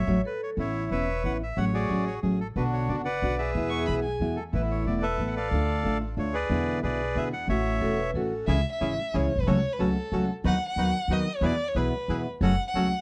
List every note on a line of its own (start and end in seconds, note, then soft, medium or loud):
0.00 0.21 C#5 medium
0.00 0.22 E5 medium
0.07 0.20 A1 medium
0.07 0.18 F#3 medium
0.07 0.18 A3 medium
0.07 0.18 C#4 medium
0.07 0.25 C#5 medium
0.25 0.56 A4 medium
0.25 0.41 B4 medium
0.43 0.50 C#5 medium
0.57 0.89 A1 medium
0.57 0.90 E3 medium
0.57 0.90 B3 medium
0.57 0.91 C#4 medium
0.57 1.05 E4 medium
0.57 0.91 E4 medium
0.57 0.90 C#5 medium
0.91 1.22 E1 soft
0.91 1.08 E3 medium
0.91 1.08 B3 medium
0.91 1.08 C#4 medium
0.91 1.09 E4 medium
0.91 1.37 B4 medium
0.91 1.37 C#5 medium
0.91 1.23 E5 medium
1.24 1.55 A1 soft
1.24 1.41 E3 medium
1.24 1.41 B3 medium
1.24 1.41 C#4 medium
1.24 1.42 E4 medium
1.24 1.33 F#5 medium
1.43 1.59 E5 medium
1.57 1.88 A1 medium
1.57 1.88 F#3 medium
1.57 1.89 A3 medium
1.57 1.89 C#4 medium
1.57 1.90 G#4 medium
1.57 2.03 C#5 medium
1.57 1.65 F#5 loud
1.74 2.20 F#4 medium
1.74 2.20 G#4 medium
1.74 2.05 D5 medium
1.90 2.21 A1 soft
1.90 2.07 F#3 medium
1.90 2.07 A3 medium
1.90 2.07 C#4 medium
1.90 2.07 G#4 medium
2.07 2.14 C#5 medium
2.22 2.54 A1 soft
2.22 2.40 F#3 medium
2.22 2.40 A3 medium
2.22 2.40 C#4 medium
2.22 2.40 G#4 medium
2.40 2.47 A4 medium
2.56 2.87 B1 medium
2.56 2.88 B2 medium
2.56 2.88 D3 medium
2.56 2.88 B3 medium
2.56 3.02 D4 medium
2.56 2.88 D4 medium
2.56 3.02 F#4 medium
2.56 2.88 F#4 medium
2.56 2.64 B4 medium
2.73 2.89 C#5 medium
2.89 3.20 F#1 soft
2.89 3.06 B2 medium
2.89 3.06 D3 medium
2.89 3.06 B3 medium
2.89 3.06 D4 medium
2.89 3.07 F#4 medium
2.89 2.96 D5 medium
3.05 3.37 B4 medium
3.05 3.51 D5 medium
3.05 3.35 F#5 medium
3.22 3.53 B1 soft
3.22 3.39 B2 medium
3.22 3.39 D3 medium
3.22 3.39 B3 medium
3.22 3.39 D4 medium
3.22 3.39 F#4 medium
3.38 4.00 G#4 medium
3.38 4.00 B4 medium
3.38 4.00 E5 medium
3.55 3.86 E2 medium
3.55 3.86 B2 medium
3.55 3.87 E3 medium
3.55 3.87 G#3 medium
3.55 3.88 B3 medium
3.55 3.88 E4 medium
3.70 3.79 B4 medium
3.70 3.85 C#6 medium
3.79 3.86 G#4 medium
3.87 4.19 B1 soft
3.87 4.04 B2 soft
3.87 4.05 E3 medium
3.87 4.04 G#3 medium
3.87 4.05 B3 medium
3.87 4.26 G#4 medium
3.87 3.94 B5 medium
4.03 4.26 G#5 medium
4.20 4.51 E2 soft
4.20 4.37 B2 medium
4.20 4.37 E3 medium
4.20 4.38 G#3 medium
4.20 4.38 B3 medium
4.20 4.38 E4 medium
4.36 4.43 A4 medium
4.52 4.84 A1 medium
4.52 4.86 E3 medium
4.52 4.86 A3 medium
4.52 4.84 B3 medium
4.52 4.86 B3 medium
4.52 4.83 E4 soft
4.52 4.99 E4 medium
4.52 4.87 E4 medium
4.52 4.84 A4 medium
4.52 4.62 B4 medium
4.71 4.86 C#5 medium
4.85 5.17 E1 soft
4.85 5.04 E3 medium
4.85 5.04 A3 medium
4.85 5.17 B3 soft
4.85 5.04 B3 medium
4.85 5.17 E4 soft
4.85 5.04 E4 medium
4.85 5.17 A4 soft
4.85 5.03 D5 medium
5.02 5.35 A4 medium
5.02 5.48 B4 medium
5.02 5.30 E5 medium
5.18 5.50 A1 soft
5.18 5.36 E3 medium
5.18 5.37 A3 medium
5.18 5.50 B3 soft
5.18 5.37 B3 medium
5.18 5.50 E4 soft
5.18 5.37 E4 medium
5.18 5.50 A4 soft
5.27 5.35 F#5 medium
5.36 5.97 A4 medium
5.36 5.98 D5 medium
5.36 5.98 F5 medium
5.51 5.83 D2 medium
5.51 5.83 D3 medium
5.51 5.84 A3 medium
5.51 5.83 D4 medium
5.51 5.85 D4 medium
5.51 5.83 F4 soft
5.51 5.85 F4 medium
5.51 5.83 A4 medium
5.84 6.16 A1 soft
5.84 6.01 D3 medium
5.84 6.02 A3 medium
5.84 6.15 D4 soft
5.84 6.02 D4 medium
5.84 6.15 F4 soft
5.84 6.02 F4 medium
5.84 6.15 A4 soft
6.16 6.48 D2 soft
6.16 6.34 D3 medium
6.16 6.34 A3 medium
6.16 6.48 D4 soft
6.16 6.34 D4 medium
6.16 6.48 F4 soft
6.16 6.34 F4 medium
6.16 6.48 A4 soft
6.16 6.35 C#5 medium
6.33 6.79 G#4 medium
6.33 6.80 B4 medium
6.33 6.80 D5 medium
6.50 6.81 E2 medium
6.50 6.82 B2 medium
6.50 6.82 D3 medium
6.50 6.83 G#3 medium
6.50 6.83 B3 medium
6.50 6.81 D4 medium
6.50 6.81 E4 medium
6.50 6.83 E4 medium
6.50 6.81 G#4 medium
6.82 7.14 B1 soft
6.82 7.00 B2 medium
6.82 7.00 D3 medium
6.82 7.00 G#3 medium
6.82 7.14 D4 soft
6.82 7.14 E4 soft
6.82 7.01 E4 medium
6.82 7.14 G#4 soft
6.82 7.29 G#4 medium
6.82 7.28 B4 medium
6.82 7.17 D5 medium
7.15 7.47 E2 soft
7.15 7.32 B2 medium
7.15 7.33 D3 medium
7.15 7.33 G#3 medium
7.15 7.33 B3 medium
7.15 7.46 D4 soft
7.15 7.47 E4 soft
7.15 7.33 E4 medium
7.15 7.47 G#4 soft
7.15 7.24 E5 loud
7.33 7.48 F#5 medium
7.47 7.79 A1 medium
7.47 7.80 E3 medium
7.47 7.79 A3 medium
7.47 7.79 C#4 medium
7.47 7.80 C#4 medium
7.47 7.79 F#4 medium
7.47 7.81 F#4 medium
7.47 7.79 A4 medium
7.47 8.11 C#5 medium
7.47 8.11 E5 loud
7.81 8.12 E1 soft
7.81 7.98 E3 medium
7.81 7.98 A3 medium
7.81 8.12 C#4 soft
7.81 7.98 C#4 medium
7.81 8.12 F#4 soft
7.81 7.98 F#4 medium
7.81 8.13 A4 soft
7.81 7.96 A4 medium
7.96 8.12 B4 medium
8.14 8.46 A1 soft
8.14 8.32 E3 medium
8.14 8.32 A3 medium
8.14 8.46 C#4 soft
8.14 8.32 C#4 medium
8.14 8.46 F#4 soft
8.14 8.32 F#4 medium
8.14 8.46 A4 soft
8.14 8.46 A4 medium
8.47 8.61 C#2 medium
8.47 8.57 C#3 medium
8.47 8.57 E3 medium
8.47 8.57 G#3 medium
8.47 8.61 C#4 medium
8.47 8.57 C#4 medium
8.47 8.61 E4 medium
8.47 8.57 E4 medium
8.47 8.61 G#4 medium
8.47 8.70 E5 medium
8.73 9.18 E5 medium
8.80 8.95 G#1 medium
8.80 8.98 C#3 medium
8.80 8.98 E3 medium
8.80 8.98 G#3 medium
8.80 8.94 C#4 medium
8.80 8.98 C#4 medium
8.80 8.94 E4 soft
8.80 8.98 E4 medium
8.80 8.94 G#4 medium
9.13 9.28 C#2 medium
9.13 9.31 C#3 medium
9.13 9.31 E3 medium
9.13 9.31 G#3 medium
9.13 9.27 C#4 soft
9.13 9.31 C#4 medium
9.13 9.27 E4 soft
9.13 9.31 E4 medium
9.13 9.27 G#4 medium
9.13 9.42 C#5 medium
9.36 9.38 A#1 soft
9.36 9.42 B1 medium
9.40 9.47 C2 medium
9.40 9.50 B4 medium
9.46 9.61 C#2 medium
9.46 9.55 C#3 medium
9.46 9.56 F#3 medium
9.46 9.56 A3 medium
9.46 9.60 C#4 medium
9.46 9.56 C#4 medium
9.46 9.60 F#4 medium
9.46 9.56 F#4 medium
9.46 9.60 A4 medium
9.46 9.74 C#5 loud
9.73 9.81 B4 medium
9.79 9.93 C#2 medium
9.79 9.96 C#3 medium
9.79 9.96 F#3 medium
9.79 9.96 A3 medium
9.79 9.93 C#4 medium
9.79 9.96 C#4 medium
9.79 9.93 F#4 soft
9.79 9.96 F#4 medium
9.79 9.93 A4 medium
9.79 10.29 A4 medium
10.12 10.25 C#2 medium
10.12 10.29 C#3 medium
10.12 10.29 F#3 medium
10.12 10.29 A3 medium
10.12 10.26 C#4 soft
10.12 10.29 C#4 medium
10.12 10.26 F#4 soft
10.12 10.29 F#4 medium
10.12 10.26 A4 medium
10.44 10.58 D#2 medium
10.44 10.53 D#3 medium
10.44 10.53 F#3 medium
10.44 10.54 B3 medium
10.44 10.58 D#4 medium
10.44 10.54 D#4 medium
10.44 10.58 F#4 medium
10.44 10.58 B4 medium
10.44 10.54 B4 loud
10.44 10.68 F#5 loud
10.69 11.14 F#5 loud
10.76 10.90 D#2 medium
10.76 10.94 D#3 medium
10.76 10.94 F#3 medium
10.76 10.94 B3 medium
10.76 10.91 D#4 medium
10.76 10.95 D#4 medium
10.76 10.91 F#4 medium
10.76 10.91 B4 medium
10.76 10.95 B4 medium
11.08 11.22 D#2 medium
11.08 11.26 D#3 medium
11.08 11.27 F#3 medium
11.08 11.27 B3 medium
11.08 11.23 D#4 soft
11.08 11.27 D#4 medium
11.08 11.24 F#4 soft
11.08 11.24 B4 medium
11.08 11.27 B4 medium
11.12 11.38 D#5 medium
11.37 11.47 C#5 medium
11.41 11.55 E2 medium
11.41 11.51 B2 medium
11.41 11.52 E3 medium
11.41 11.52 G#3 medium
11.41 11.52 B3 medium
11.41 11.56 E4 medium
11.41 11.52 E4 medium
11.41 11.56 G#4 medium
11.41 11.56 B4 medium
11.45 11.70 D5 medium
11.68 11.78 C#5 medium
11.75 11.89 B1 medium
11.75 11.93 B2 medium
11.75 11.93 E3 medium
11.75 11.93 G#3 medium
11.75 11.93 B3 medium
11.75 11.89 E4 medium
11.75 11.93 E4 medium
11.75 11.89 G#4 soft
11.75 11.89 B4 medium
11.75 12.25 B4 medium
12.08 12.22 E2 medium
12.08 12.26 B2 medium
12.08 12.26 E3 medium
12.08 12.26 G#3 medium
12.08 12.26 B3 medium
12.08 12.22 E4 soft
12.08 12.26 E4 medium
12.08 12.22 G#4 soft
12.08 12.23 B4 medium
12.41 12.55 F#1 medium
12.41 12.51 C#3 medium
12.41 12.51 F#3 medium
12.41 12.51 A3 medium
12.41 12.56 C#4 medium
12.41 12.51 C#4 medium
12.41 12.56 F#4 medium
12.41 12.51 F#4 medium
12.41 12.56 A4 medium
12.41 12.65 F#5 medium
12.68 13.01 F#5 medium
12.74 12.88 C#2 medium
12.74 12.92 C#3 medium
12.74 12.92 F#3 medium
12.74 12.92 A3 medium
12.74 12.88 C#4 medium
12.74 12.92 C#4 medium
12.74 12.88 F#4 soft
12.74 12.92 F#4 medium
12.74 12.88 A4 medium